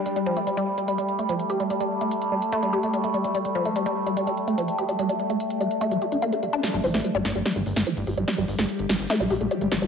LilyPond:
<<
  \new Staff \with { instrumentName = "Synth drone" } { \clef bass \time 4/4 \key c \dorian \tempo 4 = 146 <g a>1~ | <g a>1~ | <g a>1~ | <g a>1 |
<g g'>1~ | <g g'>1 | }
  \new Staff \with { instrumentName = "Synth arpeggio sound" } { \clef bass \time 4/4 \key c \dorian g16 g16 f16 a16 g16 g16 r16 g16 g16 g16 r16 a16 f16 r16 g'16 g16 | g16 g16 r16 a16 r8 g16 r16 a16 g16 g'16 a16 g16 a16 g16 g16 | g16 g16 f16 a16 g16 g16 r16 g16 g16 g16 r16 a16 f16 r16 g'16 g16 | g16 g16 r16 a16 r8 g16 r16 a16 g16 g'16 d'16 bes16 a'16 g16 d'16 |
g16 g16 f16 a16 g16 g16 r16 g16 g16 g16 r16 a16 f16 r16 g'16 g16 | g16 g16 r16 a16 r8 g16 r16 a16 g16 g'16 a16 g16 a16 g16 g16 | }
  \new Staff \with { instrumentName = "Analog synth bass" } { \clef bass \time 4/4 \key c \dorian r1 | r1 | r1 | r1 |
r16 g,,16 g,,16 a,,16 r16 g,,16 g,,16 g,,16 r16 g,,16 g,,16 g,,16 r16 g,,16 g,,16 g,,16 | r16 g,,16 g,,16 g,,16 r16 g,,16 g,,16 g,,16 r16 bes,,16 bes,,16 bes,,16 r16 g,,16 g,,16 g,,16 | }
  \new DrumStaff \with { instrumentName = "Drums" } \drummode { \time 4/4 hh16 hh8 hh16 hh16 hh8 hh16 hh16 hh16 hh16 hh16 hh16 hh16 hh16 hh16 | hh16 hh8 hh16 hh16 hh8 hh16 hh16 hh16 hh16 hh16 hh16 hh16 hh16 hh16 | hh16 hh8 hh16 hh16 hh8 hh16 hh16 hh16 hh16 hh16 hh16 hh16 hh16 hh16 | hh16 hh16 hh16 hh16 hh16 hh16 hh16 hh16 hh16 hh16 hh16 hh16 hh16 hh16 hh16 hh16 |
<hh sn>16 hh16 hho16 <hh sn>16 hh16 hh16 <hho sn>16 hh16 <hh sn>16 hh16 hho16 <hh sn>16 hh16 hh16 hho16 hh16 | <hh sn>16 hh16 hho16 <hh sn>16 hh16 hh16 <hho sn>16 hh16 <hh sn>16 hh16 hho16 hh16 hh16 hh16 <hho sn>16 hh16 | }
>>